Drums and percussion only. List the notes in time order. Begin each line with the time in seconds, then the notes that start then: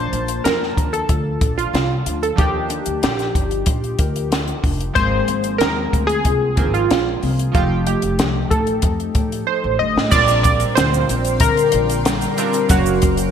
0.13 closed hi-hat
0.28 closed hi-hat
0.45 snare, closed hi-hat
0.63 snare
0.77 kick, closed hi-hat
0.94 closed hi-hat
1.09 kick, closed hi-hat
1.41 kick, closed hi-hat
1.59 closed hi-hat
1.75 snare, closed hi-hat
2.06 closed hi-hat
2.23 closed hi-hat
2.38 kick, closed hi-hat
2.70 closed hi-hat
2.86 closed hi-hat
3.03 snare, closed hi-hat
3.19 snare, closed hi-hat
3.35 kick, closed hi-hat
3.51 closed hi-hat
3.66 kick, closed hi-hat
3.84 closed hi-hat
3.99 kick, closed hi-hat
4.16 closed hi-hat
4.32 snare, closed hi-hat
4.48 closed hi-hat
4.64 kick, open hi-hat
4.80 closed hi-hat
4.96 kick, closed hi-hat
5.28 closed hi-hat
5.44 closed hi-hat
5.61 snare, closed hi-hat
5.93 kick, closed hi-hat
6.09 closed hi-hat
6.25 kick, closed hi-hat
6.57 kick, closed hi-hat
6.74 closed hi-hat
6.91 snare, closed hi-hat
7.23 open hi-hat
7.39 closed hi-hat
7.55 kick, closed hi-hat
7.87 closed hi-hat
8.02 closed hi-hat
8.19 snare, closed hi-hat
8.51 kick, closed hi-hat
8.67 closed hi-hat
8.82 kick, closed hi-hat
9.00 closed hi-hat
9.15 kick, closed hi-hat
9.32 closed hi-hat
9.98 snare
10.12 kick, crash, shaker
10.28 closed hi-hat, shaker
10.44 kick, closed hi-hat, shaker
10.60 closed hi-hat, shaker
10.77 snare, closed hi-hat, shaker
10.94 shaker
11.09 closed hi-hat, shaker
11.25 closed hi-hat, shaker
11.40 kick, closed hi-hat, shaker
11.57 closed hi-hat, shaker
11.72 closed hi-hat
11.90 closed hi-hat, shaker
12.05 snare, closed hi-hat, shaker
12.21 closed hi-hat, shaker
12.38 closed hi-hat, shaker
12.53 closed hi-hat, shaker
12.69 kick, closed hi-hat, shaker
12.86 shaker
13.02 kick, closed hi-hat, shaker
13.17 closed hi-hat, shaker